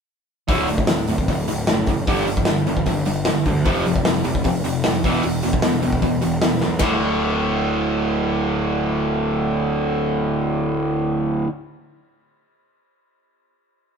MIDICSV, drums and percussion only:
0, 0, Header, 1, 2, 480
1, 0, Start_track
1, 0, Tempo, 395778
1, 593, Time_signature, 4, 2, 24, 8
1, 16945, End_track
2, 0, Start_track
2, 0, Title_t, "Drums"
2, 587, Note_on_c, 9, 46, 82
2, 589, Note_on_c, 9, 36, 112
2, 709, Note_off_c, 9, 46, 0
2, 710, Note_off_c, 9, 36, 0
2, 820, Note_on_c, 9, 46, 62
2, 942, Note_off_c, 9, 46, 0
2, 947, Note_on_c, 9, 36, 91
2, 1059, Note_on_c, 9, 38, 117
2, 1059, Note_on_c, 9, 46, 82
2, 1068, Note_off_c, 9, 36, 0
2, 1180, Note_off_c, 9, 38, 0
2, 1180, Note_off_c, 9, 46, 0
2, 1302, Note_on_c, 9, 46, 67
2, 1424, Note_off_c, 9, 46, 0
2, 1433, Note_on_c, 9, 36, 86
2, 1554, Note_off_c, 9, 36, 0
2, 1556, Note_on_c, 9, 36, 94
2, 1556, Note_on_c, 9, 46, 79
2, 1677, Note_off_c, 9, 36, 0
2, 1678, Note_off_c, 9, 46, 0
2, 1791, Note_on_c, 9, 46, 64
2, 1912, Note_off_c, 9, 46, 0
2, 2028, Note_on_c, 9, 38, 116
2, 2028, Note_on_c, 9, 46, 79
2, 2150, Note_off_c, 9, 38, 0
2, 2150, Note_off_c, 9, 46, 0
2, 2261, Note_on_c, 9, 46, 57
2, 2272, Note_on_c, 9, 36, 84
2, 2383, Note_off_c, 9, 46, 0
2, 2393, Note_off_c, 9, 36, 0
2, 2514, Note_on_c, 9, 46, 74
2, 2515, Note_on_c, 9, 36, 105
2, 2635, Note_off_c, 9, 46, 0
2, 2637, Note_off_c, 9, 36, 0
2, 2755, Note_on_c, 9, 46, 60
2, 2875, Note_on_c, 9, 36, 89
2, 2877, Note_off_c, 9, 46, 0
2, 2975, Note_on_c, 9, 38, 112
2, 2975, Note_on_c, 9, 46, 75
2, 2996, Note_off_c, 9, 36, 0
2, 3096, Note_off_c, 9, 38, 0
2, 3096, Note_off_c, 9, 46, 0
2, 3234, Note_on_c, 9, 46, 57
2, 3355, Note_off_c, 9, 46, 0
2, 3356, Note_on_c, 9, 36, 85
2, 3468, Note_on_c, 9, 46, 74
2, 3474, Note_off_c, 9, 36, 0
2, 3474, Note_on_c, 9, 36, 92
2, 3589, Note_off_c, 9, 46, 0
2, 3596, Note_off_c, 9, 36, 0
2, 3702, Note_on_c, 9, 46, 58
2, 3823, Note_off_c, 9, 46, 0
2, 3942, Note_on_c, 9, 38, 114
2, 3942, Note_on_c, 9, 46, 78
2, 4063, Note_off_c, 9, 38, 0
2, 4063, Note_off_c, 9, 46, 0
2, 4189, Note_on_c, 9, 46, 56
2, 4195, Note_on_c, 9, 36, 86
2, 4310, Note_off_c, 9, 46, 0
2, 4316, Note_off_c, 9, 36, 0
2, 4431, Note_on_c, 9, 46, 74
2, 4437, Note_on_c, 9, 36, 117
2, 4552, Note_off_c, 9, 46, 0
2, 4558, Note_off_c, 9, 36, 0
2, 4674, Note_on_c, 9, 46, 58
2, 4795, Note_off_c, 9, 46, 0
2, 4798, Note_on_c, 9, 36, 86
2, 4913, Note_on_c, 9, 38, 117
2, 4913, Note_on_c, 9, 46, 85
2, 4919, Note_off_c, 9, 36, 0
2, 5034, Note_off_c, 9, 38, 0
2, 5034, Note_off_c, 9, 46, 0
2, 5147, Note_on_c, 9, 46, 62
2, 5268, Note_off_c, 9, 46, 0
2, 5276, Note_on_c, 9, 36, 87
2, 5386, Note_on_c, 9, 46, 83
2, 5397, Note_off_c, 9, 36, 0
2, 5397, Note_on_c, 9, 36, 96
2, 5507, Note_off_c, 9, 46, 0
2, 5518, Note_off_c, 9, 36, 0
2, 5635, Note_on_c, 9, 46, 63
2, 5756, Note_off_c, 9, 46, 0
2, 5869, Note_on_c, 9, 38, 117
2, 5869, Note_on_c, 9, 46, 82
2, 5990, Note_off_c, 9, 38, 0
2, 5990, Note_off_c, 9, 46, 0
2, 6115, Note_on_c, 9, 36, 99
2, 6116, Note_on_c, 9, 46, 62
2, 6236, Note_off_c, 9, 36, 0
2, 6237, Note_off_c, 9, 46, 0
2, 6345, Note_on_c, 9, 46, 81
2, 6466, Note_off_c, 9, 46, 0
2, 6578, Note_on_c, 9, 46, 64
2, 6700, Note_off_c, 9, 46, 0
2, 6709, Note_on_c, 9, 36, 89
2, 6820, Note_on_c, 9, 38, 123
2, 6820, Note_on_c, 9, 46, 80
2, 6830, Note_off_c, 9, 36, 0
2, 6941, Note_off_c, 9, 38, 0
2, 6941, Note_off_c, 9, 46, 0
2, 7065, Note_on_c, 9, 46, 61
2, 7186, Note_off_c, 9, 46, 0
2, 7186, Note_on_c, 9, 36, 89
2, 7304, Note_off_c, 9, 36, 0
2, 7304, Note_on_c, 9, 36, 96
2, 7304, Note_on_c, 9, 46, 74
2, 7425, Note_off_c, 9, 36, 0
2, 7425, Note_off_c, 9, 46, 0
2, 7539, Note_on_c, 9, 46, 59
2, 7661, Note_off_c, 9, 46, 0
2, 7781, Note_on_c, 9, 38, 114
2, 7781, Note_on_c, 9, 46, 77
2, 7902, Note_off_c, 9, 38, 0
2, 7902, Note_off_c, 9, 46, 0
2, 8011, Note_on_c, 9, 38, 59
2, 8132, Note_off_c, 9, 38, 0
2, 8238, Note_on_c, 9, 38, 95
2, 8238, Note_on_c, 9, 53, 86
2, 8254, Note_on_c, 9, 36, 104
2, 8359, Note_off_c, 9, 38, 0
2, 8359, Note_off_c, 9, 53, 0
2, 8375, Note_off_c, 9, 36, 0
2, 16945, End_track
0, 0, End_of_file